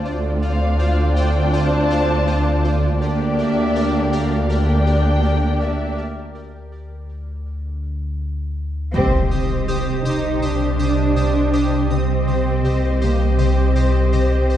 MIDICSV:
0, 0, Header, 1, 10, 480
1, 0, Start_track
1, 0, Tempo, 740741
1, 33, Time_signature, 4, 2, 24, 8
1, 9442, End_track
2, 0, Start_track
2, 0, Title_t, "Violin section"
2, 0, Program_c, 0, 48
2, 271, Note_on_c, 0, 77, 74
2, 726, Note_off_c, 0, 77, 0
2, 750, Note_on_c, 0, 79, 66
2, 992, Note_off_c, 0, 79, 0
2, 994, Note_on_c, 0, 81, 82
2, 1954, Note_off_c, 0, 81, 0
2, 2192, Note_on_c, 0, 76, 68
2, 2647, Note_off_c, 0, 76, 0
2, 2677, Note_on_c, 0, 77, 55
2, 2915, Note_off_c, 0, 77, 0
2, 2924, Note_on_c, 0, 79, 69
2, 3636, Note_on_c, 0, 76, 53
2, 3638, Note_off_c, 0, 79, 0
2, 3875, Note_off_c, 0, 76, 0
2, 5797, Note_on_c, 0, 75, 50
2, 7689, Note_off_c, 0, 75, 0
2, 7715, Note_on_c, 0, 75, 46
2, 9442, Note_off_c, 0, 75, 0
2, 9442, End_track
3, 0, Start_track
3, 0, Title_t, "Synth texture"
3, 0, Program_c, 1, 99
3, 42, Note_on_c, 1, 74, 56
3, 44, Note_on_c, 1, 65, 53
3, 45, Note_on_c, 1, 72, 55
3, 1931, Note_off_c, 1, 74, 0
3, 1933, Note_off_c, 1, 65, 0
3, 1933, Note_off_c, 1, 72, 0
3, 1954, Note_on_c, 1, 70, 49
3, 1955, Note_on_c, 1, 67, 52
3, 1957, Note_on_c, 1, 74, 46
3, 3849, Note_off_c, 1, 74, 0
3, 3874, Note_off_c, 1, 67, 0
3, 3874, Note_off_c, 1, 70, 0
3, 5789, Note_on_c, 1, 87, 68
3, 5791, Note_on_c, 1, 72, 62
3, 5794, Note_on_c, 1, 67, 59
3, 7685, Note_off_c, 1, 87, 0
3, 7686, Note_off_c, 1, 72, 0
3, 7688, Note_off_c, 1, 67, 0
3, 7711, Note_on_c, 1, 72, 49
3, 7715, Note_on_c, 1, 67, 53
3, 7717, Note_on_c, 1, 75, 45
3, 9442, Note_off_c, 1, 67, 0
3, 9442, Note_off_c, 1, 72, 0
3, 9442, Note_off_c, 1, 75, 0
3, 9442, End_track
4, 0, Start_track
4, 0, Title_t, "Violin section"
4, 0, Program_c, 2, 48
4, 27, Note_on_c, 2, 65, 63
4, 31, Note_on_c, 2, 74, 57
4, 1924, Note_off_c, 2, 65, 0
4, 1926, Note_off_c, 2, 74, 0
4, 1955, Note_on_c, 2, 67, 50
4, 1956, Note_on_c, 2, 74, 49
4, 2888, Note_off_c, 2, 67, 0
4, 2888, Note_off_c, 2, 74, 0
4, 2912, Note_on_c, 2, 67, 39
4, 2913, Note_on_c, 2, 74, 40
4, 3853, Note_off_c, 2, 67, 0
4, 3854, Note_off_c, 2, 74, 0
4, 5794, Note_on_c, 2, 72, 50
4, 7688, Note_off_c, 2, 72, 0
4, 7715, Note_on_c, 2, 72, 39
4, 9442, Note_off_c, 2, 72, 0
4, 9442, End_track
5, 0, Start_track
5, 0, Title_t, "Viola section"
5, 0, Program_c, 3, 48
5, 35, Note_on_c, 3, 60, 62
5, 35, Note_on_c, 3, 62, 58
5, 1928, Note_off_c, 3, 60, 0
5, 1928, Note_off_c, 3, 62, 0
5, 1956, Note_on_c, 3, 58, 53
5, 1956, Note_on_c, 3, 62, 48
5, 2889, Note_off_c, 3, 58, 0
5, 2889, Note_off_c, 3, 62, 0
5, 2916, Note_on_c, 3, 62, 48
5, 2918, Note_on_c, 3, 58, 48
5, 3855, Note_off_c, 3, 62, 0
5, 3856, Note_off_c, 3, 58, 0
5, 5795, Note_on_c, 3, 67, 50
5, 7688, Note_off_c, 3, 67, 0
5, 7710, Note_on_c, 3, 67, 41
5, 9442, Note_off_c, 3, 67, 0
5, 9442, End_track
6, 0, Start_track
6, 0, Title_t, "Cello section"
6, 0, Program_c, 4, 48
6, 35, Note_on_c, 4, 38, 56
6, 1928, Note_off_c, 4, 38, 0
6, 1954, Note_on_c, 4, 38, 54
6, 3847, Note_off_c, 4, 38, 0
6, 5795, Note_on_c, 4, 60, 68
6, 6488, Note_off_c, 4, 60, 0
6, 6517, Note_on_c, 4, 63, 52
6, 6755, Note_off_c, 4, 63, 0
6, 6757, Note_on_c, 4, 62, 62
6, 7715, Note_off_c, 4, 62, 0
6, 7718, Note_on_c, 4, 60, 58
6, 8435, Note_off_c, 4, 60, 0
6, 8437, Note_on_c, 4, 58, 52
6, 8675, Note_off_c, 4, 58, 0
6, 8675, Note_on_c, 4, 60, 57
6, 9442, Note_off_c, 4, 60, 0
6, 9442, End_track
7, 0, Start_track
7, 0, Title_t, "Harp"
7, 0, Program_c, 5, 46
7, 5798, Note_on_c, 5, 48, 46
7, 6029, Note_off_c, 5, 48, 0
7, 6037, Note_on_c, 5, 48, 33
7, 6269, Note_off_c, 5, 48, 0
7, 6277, Note_on_c, 5, 48, 34
7, 6506, Note_off_c, 5, 48, 0
7, 6513, Note_on_c, 5, 48, 49
7, 6744, Note_off_c, 5, 48, 0
7, 6751, Note_on_c, 5, 48, 37
7, 6982, Note_off_c, 5, 48, 0
7, 6990, Note_on_c, 5, 48, 36
7, 7220, Note_off_c, 5, 48, 0
7, 7228, Note_on_c, 5, 48, 55
7, 7472, Note_on_c, 5, 60, 41
7, 7707, Note_off_c, 5, 48, 0
7, 7715, Note_on_c, 5, 48, 47
7, 7947, Note_off_c, 5, 48, 0
7, 7955, Note_on_c, 5, 48, 39
7, 8187, Note_off_c, 5, 48, 0
7, 8195, Note_on_c, 5, 48, 33
7, 8430, Note_off_c, 5, 48, 0
7, 8438, Note_on_c, 5, 48, 54
7, 8670, Note_off_c, 5, 48, 0
7, 8678, Note_on_c, 5, 48, 44
7, 8917, Note_off_c, 5, 48, 0
7, 8925, Note_on_c, 5, 48, 45
7, 9149, Note_off_c, 5, 48, 0
7, 9156, Note_on_c, 5, 48, 58
7, 9389, Note_off_c, 5, 60, 0
7, 9397, Note_on_c, 5, 60, 45
7, 9442, Note_off_c, 5, 48, 0
7, 9442, Note_off_c, 5, 60, 0
7, 9442, End_track
8, 0, Start_track
8, 0, Title_t, "Synth drone"
8, 0, Program_c, 6, 95
8, 36, Note_on_c, 6, 38, 66
8, 1928, Note_off_c, 6, 38, 0
8, 1956, Note_on_c, 6, 38, 70
8, 3849, Note_off_c, 6, 38, 0
8, 3881, Note_on_c, 6, 38, 59
8, 5771, Note_off_c, 6, 38, 0
8, 5798, Note_on_c, 6, 36, 64
8, 7690, Note_off_c, 6, 36, 0
8, 7715, Note_on_c, 6, 36, 68
8, 9442, Note_off_c, 6, 36, 0
8, 9442, End_track
9, 0, Start_track
9, 0, Title_t, "Double bass section"
9, 0, Program_c, 7, 48
9, 37, Note_on_c, 7, 38, 56
9, 1929, Note_off_c, 7, 38, 0
9, 1953, Note_on_c, 7, 38, 56
9, 3847, Note_off_c, 7, 38, 0
9, 5794, Note_on_c, 7, 36, 51
9, 7687, Note_off_c, 7, 36, 0
9, 7712, Note_on_c, 7, 36, 40
9, 9442, Note_off_c, 7, 36, 0
9, 9442, End_track
10, 0, Start_track
10, 0, Title_t, "Impact"
10, 0, Program_c, 8, 103
10, 5793, Note_on_c, 8, 60, 43
10, 7713, Note_off_c, 8, 60, 0
10, 9442, End_track
0, 0, End_of_file